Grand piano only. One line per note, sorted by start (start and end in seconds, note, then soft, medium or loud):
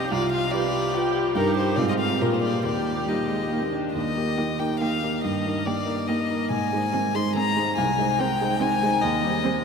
0.00 0.11 C2 soft
0.00 0.13 D#4 soft
0.00 0.14 G4 soft
0.00 0.14 C5 soft
0.11 0.52 C2 soft
0.53 0.91 F4 soft
0.53 0.91 G4 soft
0.53 0.91 B4 soft
0.94 1.32 F4 soft
0.94 1.32 G4 soft
0.94 1.32 B4 soft
1.35 1.76 G2 medium
1.35 1.73 D#4 soft
1.35 1.74 G4 soft
1.35 1.74 A#4 soft
1.77 2.19 G#2 medium
1.77 2.16 C4 soft
1.77 2.16 F4 soft
1.77 2.17 G#4 soft
2.20 2.62 A#2 soft
2.20 2.60 A#3 soft
2.20 2.60 F4 soft
2.20 2.60 G#4 soft
2.64 3.06 D#2 soft
3.08 3.48 A#3 soft
3.08 3.48 D#4 soft
3.08 3.48 G4 soft
3.52 3.91 A#3 soft
3.52 3.92 D#4 soft
3.52 3.92 G4 soft
3.95 4.16 D#2 soft
4.17 4.56 A#3 soft
4.17 4.56 D#4 soft
4.17 4.56 G4 soft
4.60 4.98 A#3 soft
4.60 4.99 D#4 soft
4.60 4.99 G4 soft
5.03 5.22 A#3 soft
5.03 5.22 D#4 soft
5.03 5.22 G4 soft
5.24 5.44 G2 soft
5.45 5.83 A#3 soft
5.45 5.83 D#4 soft
5.45 5.83 A#4 soft
5.86 6.25 A#3 soft
5.86 6.26 D#4 soft
5.86 6.26 A#4 soft
6.30 6.49 A#3 soft
6.30 6.49 D#4 soft
6.30 6.50 A#4 soft
6.50 6.71 G#2 soft
6.73 7.11 G#3 soft
6.73 7.11 D#4 soft
6.73 7.11 C5 soft
7.15 7.53 G#3 soft
7.15 7.53 D#4 soft
7.15 7.53 C5 soft
7.57 7.76 G#3 soft
7.57 7.76 D#4 soft
7.57 7.76 C5 soft
7.78 7.98 C2 medium
7.98 8.37 G#3 soft
7.98 8.37 D#4 soft
7.98 8.37 C5 soft
8.41 8.79 G#3 soft
8.41 8.79 D#4 soft
8.41 8.79 C5 soft
8.83 9.01 G#3 soft
8.83 9.02 D#4 soft
8.83 9.02 C5 soft
9.03 9.23 D#2 medium
9.23 9.62 G3 soft
9.23 9.62 D#4 soft
9.23 9.62 C5 soft